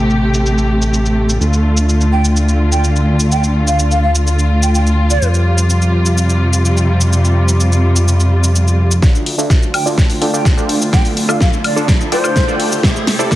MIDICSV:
0, 0, Header, 1, 7, 480
1, 0, Start_track
1, 0, Key_signature, -1, "minor"
1, 0, Tempo, 476190
1, 1417, Time_signature, 4, 2, 24, 8
1, 13462, End_track
2, 0, Start_track
2, 0, Title_t, "Flute"
2, 0, Program_c, 0, 73
2, 2137, Note_on_c, 0, 79, 89
2, 2246, Note_off_c, 0, 79, 0
2, 2738, Note_on_c, 0, 79, 82
2, 2846, Note_off_c, 0, 79, 0
2, 3338, Note_on_c, 0, 79, 85
2, 3446, Note_off_c, 0, 79, 0
2, 3699, Note_on_c, 0, 77, 86
2, 3807, Note_off_c, 0, 77, 0
2, 3939, Note_on_c, 0, 77, 82
2, 4015, Note_off_c, 0, 77, 0
2, 4059, Note_on_c, 0, 77, 73
2, 4135, Note_off_c, 0, 77, 0
2, 4659, Note_on_c, 0, 79, 80
2, 4735, Note_off_c, 0, 79, 0
2, 4779, Note_on_c, 0, 79, 68
2, 4855, Note_off_c, 0, 79, 0
2, 5138, Note_on_c, 0, 74, 91
2, 5306, Note_off_c, 0, 74, 0
2, 9818, Note_on_c, 0, 79, 90
2, 9927, Note_off_c, 0, 79, 0
2, 10418, Note_on_c, 0, 79, 84
2, 10526, Note_off_c, 0, 79, 0
2, 11017, Note_on_c, 0, 79, 96
2, 11126, Note_off_c, 0, 79, 0
2, 11378, Note_on_c, 0, 77, 82
2, 11455, Note_off_c, 0, 77, 0
2, 11499, Note_on_c, 0, 77, 76
2, 11575, Note_off_c, 0, 77, 0
2, 11739, Note_on_c, 0, 74, 90
2, 11847, Note_off_c, 0, 74, 0
2, 12217, Note_on_c, 0, 72, 97
2, 12578, Note_off_c, 0, 72, 0
2, 13462, End_track
3, 0, Start_track
3, 0, Title_t, "Supersaw synth"
3, 0, Program_c, 1, 81
3, 9097, Note_on_c, 1, 69, 74
3, 9097, Note_on_c, 1, 77, 87
3, 9098, Note_on_c, 1, 62, 80
3, 9098, Note_on_c, 1, 65, 78
3, 9098, Note_on_c, 1, 74, 77
3, 9277, Note_off_c, 1, 62, 0
3, 9277, Note_off_c, 1, 65, 0
3, 9277, Note_off_c, 1, 69, 0
3, 9277, Note_off_c, 1, 74, 0
3, 9277, Note_off_c, 1, 77, 0
3, 9456, Note_on_c, 1, 62, 83
3, 9456, Note_on_c, 1, 69, 76
3, 9457, Note_on_c, 1, 65, 79
3, 9457, Note_on_c, 1, 74, 79
3, 9457, Note_on_c, 1, 76, 92
3, 9744, Note_off_c, 1, 62, 0
3, 9744, Note_off_c, 1, 65, 0
3, 9744, Note_off_c, 1, 69, 0
3, 9744, Note_off_c, 1, 74, 0
3, 9744, Note_off_c, 1, 76, 0
3, 9936, Note_on_c, 1, 62, 84
3, 9937, Note_on_c, 1, 65, 81
3, 9937, Note_on_c, 1, 69, 80
3, 9937, Note_on_c, 1, 74, 80
3, 9937, Note_on_c, 1, 81, 97
3, 10268, Note_off_c, 1, 62, 0
3, 10268, Note_off_c, 1, 74, 0
3, 10269, Note_off_c, 1, 65, 0
3, 10269, Note_off_c, 1, 69, 0
3, 10269, Note_off_c, 1, 81, 0
3, 10297, Note_on_c, 1, 62, 78
3, 10297, Note_on_c, 1, 65, 74
3, 10297, Note_on_c, 1, 69, 70
3, 10297, Note_on_c, 1, 74, 76
3, 10297, Note_on_c, 1, 79, 89
3, 10399, Note_off_c, 1, 65, 0
3, 10399, Note_off_c, 1, 74, 0
3, 10399, Note_off_c, 1, 79, 0
3, 10400, Note_off_c, 1, 62, 0
3, 10400, Note_off_c, 1, 69, 0
3, 10418, Note_on_c, 1, 62, 85
3, 10418, Note_on_c, 1, 65, 75
3, 10418, Note_on_c, 1, 69, 78
3, 10418, Note_on_c, 1, 74, 77
3, 10418, Note_on_c, 1, 79, 88
3, 10629, Note_off_c, 1, 62, 0
3, 10629, Note_off_c, 1, 65, 0
3, 10629, Note_off_c, 1, 69, 0
3, 10629, Note_off_c, 1, 74, 0
3, 10629, Note_off_c, 1, 79, 0
3, 10656, Note_on_c, 1, 79, 108
3, 10657, Note_on_c, 1, 62, 100
3, 10657, Note_on_c, 1, 65, 89
3, 10657, Note_on_c, 1, 69, 89
3, 10657, Note_on_c, 1, 74, 91
3, 10988, Note_off_c, 1, 79, 0
3, 10989, Note_off_c, 1, 62, 0
3, 10989, Note_off_c, 1, 65, 0
3, 10989, Note_off_c, 1, 69, 0
3, 10989, Note_off_c, 1, 74, 0
3, 11016, Note_on_c, 1, 62, 84
3, 11016, Note_on_c, 1, 65, 75
3, 11016, Note_on_c, 1, 69, 79
3, 11016, Note_on_c, 1, 77, 91
3, 11017, Note_on_c, 1, 74, 79
3, 11196, Note_off_c, 1, 62, 0
3, 11196, Note_off_c, 1, 69, 0
3, 11196, Note_off_c, 1, 77, 0
3, 11197, Note_off_c, 1, 65, 0
3, 11197, Note_off_c, 1, 74, 0
3, 11376, Note_on_c, 1, 76, 92
3, 11377, Note_on_c, 1, 62, 86
3, 11377, Note_on_c, 1, 65, 76
3, 11377, Note_on_c, 1, 69, 80
3, 11377, Note_on_c, 1, 74, 75
3, 11664, Note_off_c, 1, 62, 0
3, 11664, Note_off_c, 1, 65, 0
3, 11664, Note_off_c, 1, 69, 0
3, 11664, Note_off_c, 1, 76, 0
3, 11665, Note_off_c, 1, 74, 0
3, 11857, Note_on_c, 1, 65, 83
3, 11857, Note_on_c, 1, 69, 82
3, 11857, Note_on_c, 1, 74, 83
3, 11857, Note_on_c, 1, 81, 96
3, 11858, Note_on_c, 1, 62, 88
3, 12189, Note_off_c, 1, 62, 0
3, 12189, Note_off_c, 1, 65, 0
3, 12189, Note_off_c, 1, 69, 0
3, 12189, Note_off_c, 1, 74, 0
3, 12189, Note_off_c, 1, 81, 0
3, 12217, Note_on_c, 1, 65, 74
3, 12217, Note_on_c, 1, 69, 71
3, 12217, Note_on_c, 1, 79, 90
3, 12218, Note_on_c, 1, 62, 79
3, 12218, Note_on_c, 1, 74, 71
3, 12319, Note_off_c, 1, 69, 0
3, 12320, Note_off_c, 1, 62, 0
3, 12320, Note_off_c, 1, 65, 0
3, 12320, Note_off_c, 1, 74, 0
3, 12320, Note_off_c, 1, 79, 0
3, 12337, Note_on_c, 1, 62, 86
3, 12337, Note_on_c, 1, 65, 79
3, 12337, Note_on_c, 1, 69, 77
3, 12337, Note_on_c, 1, 74, 73
3, 12337, Note_on_c, 1, 79, 94
3, 12548, Note_off_c, 1, 74, 0
3, 12549, Note_off_c, 1, 62, 0
3, 12549, Note_off_c, 1, 65, 0
3, 12549, Note_off_c, 1, 69, 0
3, 12549, Note_off_c, 1, 79, 0
3, 12578, Note_on_c, 1, 62, 95
3, 12578, Note_on_c, 1, 65, 90
3, 12578, Note_on_c, 1, 69, 92
3, 12578, Note_on_c, 1, 74, 92
3, 12578, Note_on_c, 1, 79, 107
3, 12909, Note_off_c, 1, 62, 0
3, 12909, Note_off_c, 1, 65, 0
3, 12909, Note_off_c, 1, 69, 0
3, 12909, Note_off_c, 1, 74, 0
3, 12909, Note_off_c, 1, 79, 0
3, 12937, Note_on_c, 1, 64, 84
3, 12937, Note_on_c, 1, 67, 79
3, 12937, Note_on_c, 1, 69, 79
3, 12937, Note_on_c, 1, 76, 96
3, 12938, Note_on_c, 1, 72, 76
3, 13117, Note_off_c, 1, 64, 0
3, 13117, Note_off_c, 1, 67, 0
3, 13117, Note_off_c, 1, 69, 0
3, 13117, Note_off_c, 1, 72, 0
3, 13117, Note_off_c, 1, 76, 0
3, 13297, Note_on_c, 1, 64, 84
3, 13297, Note_on_c, 1, 67, 79
3, 13297, Note_on_c, 1, 69, 78
3, 13297, Note_on_c, 1, 72, 77
3, 13297, Note_on_c, 1, 74, 93
3, 13462, Note_off_c, 1, 64, 0
3, 13462, Note_off_c, 1, 67, 0
3, 13462, Note_off_c, 1, 69, 0
3, 13462, Note_off_c, 1, 72, 0
3, 13462, Note_off_c, 1, 74, 0
3, 13462, End_track
4, 0, Start_track
4, 0, Title_t, "String section"
4, 0, Program_c, 2, 48
4, 0, Note_on_c, 2, 48, 77
4, 0, Note_on_c, 2, 57, 72
4, 0, Note_on_c, 2, 67, 85
4, 1379, Note_off_c, 2, 48, 0
4, 1379, Note_off_c, 2, 67, 0
4, 1415, Note_on_c, 2, 50, 74
4, 1415, Note_on_c, 2, 65, 83
4, 5217, Note_off_c, 2, 57, 0
4, 5218, Note_off_c, 2, 50, 0
4, 5257, Note_on_c, 2, 48, 80
4, 5258, Note_on_c, 2, 55, 72
4, 9056, Note_off_c, 2, 65, 0
4, 9059, Note_off_c, 2, 48, 0
4, 9059, Note_off_c, 2, 55, 0
4, 9095, Note_on_c, 2, 50, 78
4, 9096, Note_on_c, 2, 65, 86
4, 9097, Note_on_c, 2, 57, 74
4, 12898, Note_off_c, 2, 50, 0
4, 12898, Note_off_c, 2, 65, 0
4, 12935, Note_on_c, 2, 48, 82
4, 12937, Note_on_c, 2, 67, 92
4, 13462, Note_off_c, 2, 48, 0
4, 13462, Note_off_c, 2, 57, 0
4, 13462, Note_off_c, 2, 67, 0
4, 13462, End_track
5, 0, Start_track
5, 0, Title_t, "Analog synth bass"
5, 0, Program_c, 3, 38
5, 0, Note_on_c, 3, 33, 86
5, 1394, Note_off_c, 3, 33, 0
5, 1418, Note_on_c, 3, 38, 90
5, 5234, Note_off_c, 3, 38, 0
5, 5258, Note_on_c, 3, 41, 86
5, 9074, Note_off_c, 3, 41, 0
5, 9097, Note_on_c, 3, 38, 100
5, 9433, Note_off_c, 3, 38, 0
5, 9457, Note_on_c, 3, 38, 100
5, 9914, Note_off_c, 3, 38, 0
5, 9937, Note_on_c, 3, 38, 91
5, 10273, Note_off_c, 3, 38, 0
5, 10297, Note_on_c, 3, 38, 93
5, 10393, Note_off_c, 3, 38, 0
5, 10417, Note_on_c, 3, 38, 96
5, 10633, Note_off_c, 3, 38, 0
5, 10657, Note_on_c, 3, 38, 95
5, 10994, Note_off_c, 3, 38, 0
5, 11017, Note_on_c, 3, 38, 100
5, 11353, Note_off_c, 3, 38, 0
5, 11377, Note_on_c, 3, 38, 96
5, 11833, Note_off_c, 3, 38, 0
5, 11857, Note_on_c, 3, 38, 90
5, 12193, Note_off_c, 3, 38, 0
5, 12218, Note_on_c, 3, 38, 99
5, 12314, Note_off_c, 3, 38, 0
5, 12338, Note_on_c, 3, 38, 98
5, 12554, Note_off_c, 3, 38, 0
5, 12578, Note_on_c, 3, 38, 95
5, 12914, Note_off_c, 3, 38, 0
5, 12937, Note_on_c, 3, 33, 102
5, 13273, Note_off_c, 3, 33, 0
5, 13297, Note_on_c, 3, 33, 95
5, 13462, Note_off_c, 3, 33, 0
5, 13462, End_track
6, 0, Start_track
6, 0, Title_t, "Riser"
6, 0, Program_c, 4, 103
6, 9097, Note_on_c, 4, 60, 77
6, 13462, Note_off_c, 4, 60, 0
6, 13462, End_track
7, 0, Start_track
7, 0, Title_t, "Drums"
7, 105, Note_on_c, 9, 82, 29
7, 205, Note_off_c, 9, 82, 0
7, 345, Note_on_c, 9, 82, 60
7, 446, Note_off_c, 9, 82, 0
7, 466, Note_on_c, 9, 82, 48
7, 567, Note_off_c, 9, 82, 0
7, 586, Note_on_c, 9, 82, 30
7, 687, Note_off_c, 9, 82, 0
7, 826, Note_on_c, 9, 82, 57
7, 926, Note_off_c, 9, 82, 0
7, 945, Note_on_c, 9, 82, 49
7, 1046, Note_off_c, 9, 82, 0
7, 1066, Note_on_c, 9, 82, 30
7, 1166, Note_off_c, 9, 82, 0
7, 1306, Note_on_c, 9, 82, 60
7, 1407, Note_off_c, 9, 82, 0
7, 1425, Note_on_c, 9, 82, 53
7, 1526, Note_off_c, 9, 82, 0
7, 1546, Note_on_c, 9, 82, 30
7, 1647, Note_off_c, 9, 82, 0
7, 1785, Note_on_c, 9, 82, 62
7, 1886, Note_off_c, 9, 82, 0
7, 1906, Note_on_c, 9, 82, 52
7, 2007, Note_off_c, 9, 82, 0
7, 2025, Note_on_c, 9, 82, 30
7, 2126, Note_off_c, 9, 82, 0
7, 2265, Note_on_c, 9, 82, 59
7, 2365, Note_off_c, 9, 82, 0
7, 2385, Note_on_c, 9, 82, 48
7, 2485, Note_off_c, 9, 82, 0
7, 2505, Note_on_c, 9, 82, 30
7, 2606, Note_off_c, 9, 82, 0
7, 2745, Note_on_c, 9, 82, 61
7, 2846, Note_off_c, 9, 82, 0
7, 2864, Note_on_c, 9, 82, 53
7, 2965, Note_off_c, 9, 82, 0
7, 2985, Note_on_c, 9, 82, 30
7, 3086, Note_off_c, 9, 82, 0
7, 3224, Note_on_c, 9, 82, 64
7, 3324, Note_off_c, 9, 82, 0
7, 3344, Note_on_c, 9, 82, 54
7, 3445, Note_off_c, 9, 82, 0
7, 3464, Note_on_c, 9, 82, 32
7, 3565, Note_off_c, 9, 82, 0
7, 3704, Note_on_c, 9, 82, 64
7, 3805, Note_off_c, 9, 82, 0
7, 3824, Note_on_c, 9, 82, 52
7, 3925, Note_off_c, 9, 82, 0
7, 3944, Note_on_c, 9, 82, 33
7, 4045, Note_off_c, 9, 82, 0
7, 4186, Note_on_c, 9, 82, 61
7, 4286, Note_off_c, 9, 82, 0
7, 4305, Note_on_c, 9, 82, 53
7, 4406, Note_off_c, 9, 82, 0
7, 4426, Note_on_c, 9, 82, 33
7, 4527, Note_off_c, 9, 82, 0
7, 4665, Note_on_c, 9, 82, 63
7, 4766, Note_off_c, 9, 82, 0
7, 4785, Note_on_c, 9, 82, 54
7, 4886, Note_off_c, 9, 82, 0
7, 4906, Note_on_c, 9, 82, 30
7, 5007, Note_off_c, 9, 82, 0
7, 5145, Note_on_c, 9, 82, 65
7, 5246, Note_off_c, 9, 82, 0
7, 5265, Note_on_c, 9, 82, 55
7, 5366, Note_off_c, 9, 82, 0
7, 5385, Note_on_c, 9, 82, 33
7, 5486, Note_off_c, 9, 82, 0
7, 5625, Note_on_c, 9, 82, 68
7, 5726, Note_off_c, 9, 82, 0
7, 5745, Note_on_c, 9, 82, 54
7, 5846, Note_off_c, 9, 82, 0
7, 5865, Note_on_c, 9, 82, 33
7, 5965, Note_off_c, 9, 82, 0
7, 6105, Note_on_c, 9, 82, 66
7, 6206, Note_off_c, 9, 82, 0
7, 6226, Note_on_c, 9, 82, 55
7, 6327, Note_off_c, 9, 82, 0
7, 6345, Note_on_c, 9, 82, 33
7, 6446, Note_off_c, 9, 82, 0
7, 6585, Note_on_c, 9, 82, 62
7, 6686, Note_off_c, 9, 82, 0
7, 6705, Note_on_c, 9, 82, 54
7, 6806, Note_off_c, 9, 82, 0
7, 6826, Note_on_c, 9, 82, 33
7, 6927, Note_off_c, 9, 82, 0
7, 7065, Note_on_c, 9, 82, 67
7, 7166, Note_off_c, 9, 82, 0
7, 7185, Note_on_c, 9, 82, 54
7, 7286, Note_off_c, 9, 82, 0
7, 7305, Note_on_c, 9, 82, 34
7, 7406, Note_off_c, 9, 82, 0
7, 7545, Note_on_c, 9, 82, 67
7, 7645, Note_off_c, 9, 82, 0
7, 7665, Note_on_c, 9, 82, 57
7, 7766, Note_off_c, 9, 82, 0
7, 7785, Note_on_c, 9, 82, 34
7, 7886, Note_off_c, 9, 82, 0
7, 8026, Note_on_c, 9, 82, 66
7, 8126, Note_off_c, 9, 82, 0
7, 8146, Note_on_c, 9, 82, 57
7, 8246, Note_off_c, 9, 82, 0
7, 8266, Note_on_c, 9, 82, 33
7, 8367, Note_off_c, 9, 82, 0
7, 8506, Note_on_c, 9, 82, 65
7, 8606, Note_off_c, 9, 82, 0
7, 8625, Note_on_c, 9, 82, 55
7, 8726, Note_off_c, 9, 82, 0
7, 8747, Note_on_c, 9, 82, 34
7, 8847, Note_off_c, 9, 82, 0
7, 8986, Note_on_c, 9, 82, 67
7, 9087, Note_off_c, 9, 82, 0
7, 9097, Note_on_c, 9, 36, 115
7, 9098, Note_on_c, 9, 38, 46
7, 9105, Note_on_c, 9, 82, 57
7, 9198, Note_off_c, 9, 36, 0
7, 9199, Note_off_c, 9, 38, 0
7, 9206, Note_off_c, 9, 82, 0
7, 9226, Note_on_c, 9, 82, 34
7, 9326, Note_off_c, 9, 82, 0
7, 9338, Note_on_c, 9, 46, 102
7, 9439, Note_off_c, 9, 46, 0
7, 9465, Note_on_c, 9, 82, 69
7, 9566, Note_off_c, 9, 82, 0
7, 9577, Note_on_c, 9, 36, 118
7, 9577, Note_on_c, 9, 38, 50
7, 9585, Note_on_c, 9, 82, 56
7, 9677, Note_off_c, 9, 36, 0
7, 9678, Note_off_c, 9, 38, 0
7, 9685, Note_off_c, 9, 82, 0
7, 9705, Note_on_c, 9, 82, 33
7, 9806, Note_off_c, 9, 82, 0
7, 9817, Note_on_c, 9, 46, 103
7, 9817, Note_on_c, 9, 76, 72
7, 9918, Note_off_c, 9, 46, 0
7, 9918, Note_off_c, 9, 76, 0
7, 9946, Note_on_c, 9, 82, 69
7, 10046, Note_off_c, 9, 82, 0
7, 10057, Note_on_c, 9, 36, 123
7, 10058, Note_on_c, 9, 38, 53
7, 10065, Note_on_c, 9, 82, 57
7, 10157, Note_off_c, 9, 36, 0
7, 10159, Note_off_c, 9, 38, 0
7, 10166, Note_off_c, 9, 82, 0
7, 10177, Note_on_c, 9, 46, 59
7, 10185, Note_on_c, 9, 82, 35
7, 10278, Note_off_c, 9, 46, 0
7, 10286, Note_off_c, 9, 82, 0
7, 10298, Note_on_c, 9, 46, 107
7, 10399, Note_off_c, 9, 46, 0
7, 10425, Note_on_c, 9, 82, 64
7, 10526, Note_off_c, 9, 82, 0
7, 10536, Note_on_c, 9, 36, 123
7, 10537, Note_on_c, 9, 38, 56
7, 10545, Note_on_c, 9, 82, 59
7, 10637, Note_off_c, 9, 36, 0
7, 10638, Note_off_c, 9, 38, 0
7, 10645, Note_off_c, 9, 82, 0
7, 10665, Note_on_c, 9, 82, 34
7, 10766, Note_off_c, 9, 82, 0
7, 10777, Note_on_c, 9, 46, 104
7, 10878, Note_off_c, 9, 46, 0
7, 10905, Note_on_c, 9, 82, 67
7, 11006, Note_off_c, 9, 82, 0
7, 11016, Note_on_c, 9, 36, 121
7, 11018, Note_on_c, 9, 38, 59
7, 11025, Note_on_c, 9, 82, 54
7, 11117, Note_off_c, 9, 36, 0
7, 11118, Note_off_c, 9, 38, 0
7, 11126, Note_off_c, 9, 82, 0
7, 11138, Note_on_c, 9, 46, 64
7, 11145, Note_on_c, 9, 82, 32
7, 11239, Note_off_c, 9, 46, 0
7, 11246, Note_off_c, 9, 82, 0
7, 11258, Note_on_c, 9, 46, 107
7, 11359, Note_off_c, 9, 46, 0
7, 11379, Note_on_c, 9, 76, 78
7, 11387, Note_on_c, 9, 82, 68
7, 11480, Note_off_c, 9, 76, 0
7, 11488, Note_off_c, 9, 82, 0
7, 11496, Note_on_c, 9, 36, 122
7, 11499, Note_on_c, 9, 38, 63
7, 11506, Note_on_c, 9, 82, 55
7, 11597, Note_off_c, 9, 36, 0
7, 11599, Note_off_c, 9, 38, 0
7, 11607, Note_off_c, 9, 82, 0
7, 11625, Note_on_c, 9, 82, 33
7, 11726, Note_off_c, 9, 82, 0
7, 11737, Note_on_c, 9, 46, 108
7, 11737, Note_on_c, 9, 76, 69
7, 11838, Note_off_c, 9, 46, 0
7, 11838, Note_off_c, 9, 76, 0
7, 11865, Note_on_c, 9, 82, 69
7, 11966, Note_off_c, 9, 82, 0
7, 11976, Note_on_c, 9, 36, 126
7, 11977, Note_on_c, 9, 38, 64
7, 11985, Note_on_c, 9, 82, 55
7, 12077, Note_off_c, 9, 36, 0
7, 12078, Note_off_c, 9, 38, 0
7, 12085, Note_off_c, 9, 82, 0
7, 12104, Note_on_c, 9, 82, 34
7, 12205, Note_off_c, 9, 82, 0
7, 12217, Note_on_c, 9, 46, 109
7, 12318, Note_off_c, 9, 46, 0
7, 12338, Note_on_c, 9, 76, 70
7, 12345, Note_on_c, 9, 82, 63
7, 12438, Note_off_c, 9, 76, 0
7, 12446, Note_off_c, 9, 82, 0
7, 12456, Note_on_c, 9, 36, 117
7, 12457, Note_on_c, 9, 38, 72
7, 12465, Note_on_c, 9, 82, 55
7, 12557, Note_off_c, 9, 36, 0
7, 12558, Note_off_c, 9, 38, 0
7, 12565, Note_off_c, 9, 82, 0
7, 12585, Note_on_c, 9, 82, 33
7, 12686, Note_off_c, 9, 82, 0
7, 12697, Note_on_c, 9, 46, 112
7, 12798, Note_off_c, 9, 46, 0
7, 12825, Note_on_c, 9, 82, 70
7, 12926, Note_off_c, 9, 82, 0
7, 12936, Note_on_c, 9, 36, 127
7, 12938, Note_on_c, 9, 38, 75
7, 12946, Note_on_c, 9, 82, 54
7, 13037, Note_off_c, 9, 36, 0
7, 13039, Note_off_c, 9, 38, 0
7, 13047, Note_off_c, 9, 82, 0
7, 13065, Note_on_c, 9, 82, 34
7, 13166, Note_off_c, 9, 82, 0
7, 13178, Note_on_c, 9, 38, 71
7, 13178, Note_on_c, 9, 46, 109
7, 13279, Note_off_c, 9, 38, 0
7, 13279, Note_off_c, 9, 46, 0
7, 13305, Note_on_c, 9, 82, 67
7, 13406, Note_off_c, 9, 82, 0
7, 13417, Note_on_c, 9, 36, 127
7, 13418, Note_on_c, 9, 38, 75
7, 13425, Note_on_c, 9, 82, 56
7, 13462, Note_off_c, 9, 36, 0
7, 13462, Note_off_c, 9, 38, 0
7, 13462, Note_off_c, 9, 82, 0
7, 13462, End_track
0, 0, End_of_file